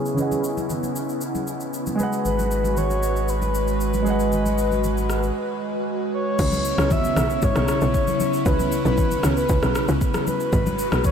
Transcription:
Already playing: C#3 B3 C#4 E4 G#4 B4 D#5 E5
0.06 shaker
0.14 C#3 C#4 B4, low conga, shaker
0.20 D#5 F#5
0.32 high conga, shaker
0.44 shaker
0.57 high conga, shaker
0.70 low conga, shaker
0.83 high conga, shaker
0.96 shaker
1.09 shaker
1.21 shaker
1.35 high conga, shaker
1.47 shaker
1.60 shaker
1.74 shaker
1.87 high conga, shaker
1.96 G#3 F#4 G#4 B4, shaker
2.00 D#5 F#5, high conga
2.13 shaker
2.25 G#1 B4, low conga, shaker
2.39 high conga, shaker
2.51 shaker
2.65 high conga, shaker
2.77 C#5, low conga, shaker
2.90 high conga, shaker
3.03 shaker
3.16 shaker
3.28 B4, shaker
3.42 high conga, shaker
3.55 shaker
3.68 shaker
3.81 shaker
3.94 high conga, shaker
4.03 G#3 G#4 B4, shaker
4.07 D#5 F#5, high conga
4.20 shaker
4.32 low conga, shaker
4.46 high conga, shaker
4.58 shaker
4.71 high conga, shaker
4.84 low conga, shaker
4.97 high conga, shaker
5.10 cross-stick, shaker
5.23 shaker
6.14 C#5
6.39 C#2 C#3 B3 C#4 E4, kick, crash, low conga, shaker
6.52 high conga, shaker
6.65 shaker
6.78 C#2, cross-stick, high conga, shaker
6.91 E5, kick, low conga, shaker
7.04 high conga, shaker
7.16 B1, cross-stick, low conga, shaker
7.30 shaker
7.36 E5
7.42 G#1 C#5, kick, shaker
7.55 B1, cross-stick, high conga, shaker
7.68 cross-stick, shaker
7.81 B1, shaker
7.94 C#5, kick, shaker
8.07 high conga, shaker
8.20 high conga, shaker
8.33 shaker
8.46 C#2 B4, kick, low conga, shaker
8.59 high conga, shaker
8.72 shaker
8.85 B1 B4, high conga, shaker
8.98 kick, low conga, shaker
9.11 high conga, shaker
9.23 C#2 C#5, cross-stick, low conga, shaker
9.37 B4, shaker
9.49 C#2, kick, shaker
9.63 B1, cross-stick, high conga, shaker
9.75 cross-stick, shaker
9.88 C#2, shaker
10.01 kick, shaker
10.14 cross-stick, high conga, shaker
10.27 G#3 F#4 B4, high conga, shaker
10.40 shaker
10.53 G#1, kick, low conga, shaker
10.66 high conga, shaker
10.79 shaker
10.92 B1, cross-stick, high conga, shaker
11.04 C#5, kick, low conga, shaker

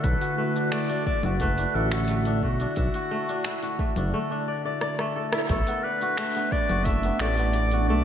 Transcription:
Already playing: D3 A3 D4 E4 F#4 E5
0.03 B1 E4 B4, kick, open hi-hat, shaker
0.21 F#4, open hi-hat, shaker
0.38 A3 B4
0.56 D4, shaker
0.72 A3 D5, finger snap, open hi-hat, shaker
0.90 D4, open hi-hat, shaker
1.06 D5 E5, kick
1.23 F#1 F#4, low conga, shaker
1.40 A3 B4, kick, open hi-hat, shaker
1.58 D4, open hi-hat, shaker
1.75 A1 E4 A4
1.92 F#4, finger snap, open hi-hat, shaker
2.08 A3, open hi-hat, shaker
2.25 D4, open hi-hat, shaker
2.43 B1 A3 F#4, kick
2.60 D4, open hi-hat, shaker
2.76 B1 E5, kick, open hi-hat, shaker
2.94 F#4, open hi-hat, shaker
3.11 A3
3.29 D4, shaker
3.44 E4, finger snap, open hi-hat, shaker
3.63 F#4, open hi-hat, shaker
3.79 A3, kick
3.96 F#1 D4, open hi-hat, low conga, shaker
4.14 A3
4.31 D4
4.48 D5
4.65 D5
4.81 D5, cross-stick
4.99 A3, cross-stick
5.16 A4
5.33 E4, cross-stick
5.49 B1 A3 B3 D4 A4, kick, open hi-hat, shaker
5.67 B3, open hi-hat, shaker
5.83 B4 D5
6.01 F#4, shaker
6.17 A3, finger snap, open hi-hat, shaker
6.35 B3, open hi-hat, shaker
6.52 D4 D5, kick
6.69 F#1 F#4, low conga, shaker
6.85 A3 E5, kick, open hi-hat, shaker
7.03 B3, open hi-hat, shaker
7.19 A1 A3 D5, finger snap
7.37 B3, open hi-hat, shaker
7.53 D5, open hi-hat, shaker
7.71 F#4, open hi-hat, shaker
7.88 B1 A3 D5

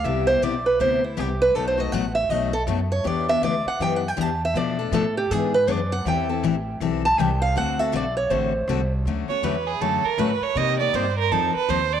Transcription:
0.04 C2 C3 G3 B3 E4 G4 E5
0.27 B3 E4 G4 C5
0.41 B1 C3 G3 B3 E4 G4 D5
0.66 B4
0.79 D2 C3 G3 B3 E4 G4 C5
1.04 E4
1.17 C2 C3 G3 B3 E4 G4
1.42 B4
1.55 B1 B2 F#3 A3 D#4 F#4 A4
1.68 C5
1.78 A3 D#4 F#4 D#5
1.92 A1 B2 F#3 A3 D#4 F#4 F#5
2.15 E5
2.29 B1 B2 F#3 A3 D#4 F#4 D#5
2.53 A4
2.67 F#2 B2 F#3 A3 D#4 F#4
2.92 C#5
3.04 E2 E3 B3 D4 G4 D5
3.28 B3 D4 G4 E5
3.42 D2 E3 B3 D4 G4 D5
3.65 F#5, muted upright bass stroke
3.79 F#2 E3 B3 D4 G4 G5
3.96 F#5
4.08 G5
4.17 E2 E3 B3 D4 G4
4.21 A5
4.45 E5
4.54 B2 F3 A3 D4 A4 D5
4.79 A3 D4 A4
4.92 A2 B2 F3 A3 D4 A4
5.17 G4
5.30 G#2 E3 B3 D4 G#4
5.54 B4
5.67 F#2 E3 B3 D4 G#4 D5
5.92 F#5
6.05 E2 E3 G3 C4 E4 A4 G5
6.29 C4 E4 A4
6.43 A1 E3 G3 C4 E4 A4
6.80 B1 E3 G3 C4 E4 A4
7.05 A5
7.18 C2 E3 G3 C4 E4 A4 G5
7.42 F5
7.56 D2 D3 A3 C4 F#4 A4 F#5
7.79 C4 F#4 A4 E5
7.92 B1 D3 A3 C4 F#4 A4 D5
8.17 C#5
8.30 A1 D3 A3 C4 F#4 A4 C5
8.68 C2 D3 A3 C4 F#4 A4
9.05 D2 D3 F#3 A3 C#4 F#4
9.29 A3 C#4 F#4 C#5, muted upright bass stroke
9.43 E2 D3 F#3 A3 C#4 F#4 B4
9.67 G#4
9.80 F#2 D3 F#3 A3 C#4 F#4 A4
10.04 A#4, muted upright bass stroke
10.18 A2 D3 F#3 A3 C#4 F#4 B4
10.41 C#5, muted upright bass stroke
10.55 C3 G3 A#3 D#4 G4 D#5
10.79 A#3 D#4 G4 D5
10.93 G2 C3 G3 A#3 D#4 G4 C5
11.19 A#4
11.31 F2 F3 C4 D#4 A4
11.55 B4, muted upright bass stroke
11.69 D#2 F3 C4 D#4 A4 C5
11.93 D5

